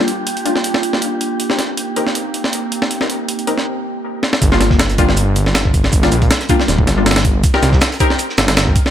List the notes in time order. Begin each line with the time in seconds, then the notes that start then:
Already playing: A#3 D4 F4 G4 G5
0.08 closed hi-hat
0.27 closed hi-hat
0.37 closed hi-hat
0.45 G3 A#3 D4 F4, closed hi-hat
0.56 snare
0.64 closed hi-hat
0.74 snare
0.83 closed hi-hat
0.93 G3 A#3 D4 F4, snare
1.02 closed hi-hat
1.21 closed hi-hat
1.40 A#3 C4 D#4, closed hi-hat
1.50 C4 D#4 G4 A#4, snare
1.59 snare, closed hi-hat
1.77 closed hi-hat
1.96 C4 D#4 G4 A#4, closed hi-hat
2.07 snare
2.15 closed hi-hat
2.34 closed hi-hat
2.44 snare
2.53 closed hi-hat
2.72 closed hi-hat
2.82 snare
2.91 closed hi-hat
3.01 C4 D#4 G4 A#4, snare
3.10 closed hi-hat
3.29 closed hi-hat
3.39 closed hi-hat
3.47 C4 D#4 G4 A#4, closed hi-hat
3.58 snare
4.23 snare
4.33 snare
4.42 G1, kick, closed hi-hat, shaker
4.52 G3 A#3 D4 F4, snare
4.61 snare, closed hi-hat, shaker
4.71 kick, snare
4.79 snare, closed hi-hat, shaker
4.89 closed hi-hat
4.98 G3 A#3 D4 F4, kick, closed hi-hat, shaker
5.09 snare
5.17 closed hi-hat, shaker
5.36 closed hi-hat, shaker
5.46 snare
5.54 snare, closed hi-hat, shaker
5.65 kick
5.74 kick, closed hi-hat, shaker
5.84 snare
5.92 kick, closed hi-hat, shaker
6.03 G3 A#3 D4 F4, snare, closed hi-hat
6.12 A#1, closed hi-hat, shaker
6.22 kick, closed hi-hat
6.31 snare, closed hi-hat, shaker
6.40 snare, closed hi-hat
6.49 G3 A#3 D4 F4, kick, closed hi-hat, shaker
6.60 snare
6.68 D1, snare, closed hi-hat, shaker
6.78 kick
6.87 G1, snare, closed hi-hat, shaker
6.97 G3 A#3 D4 F4
7.06 snare, closed hi-hat, shaker
7.11 snare, closed hi-hat
7.16 snare, closed hi-hat
7.24 kick, closed hi-hat, shaker
7.44 kick, closed hi-hat, shaker
7.54 C4 D#4 G4 A#4, snare
7.62 C2, snare, closed hi-hat, shaker
7.72 kick, snare
7.81 snare, closed hi-hat, shaker
7.92 closed hi-hat
8.00 C4 D#4 G4 A#4, kick, closed hi-hat, shaker
8.10 snare
8.19 closed hi-hat, shaker
8.29 snare
8.38 G1, snare, closed hi-hat, shaker
8.48 snare, closed hi-hat
8.57 snare, closed hi-hat, shaker
8.67 kick
8.76 kick, closed hi-hat, shaker
8.86 snare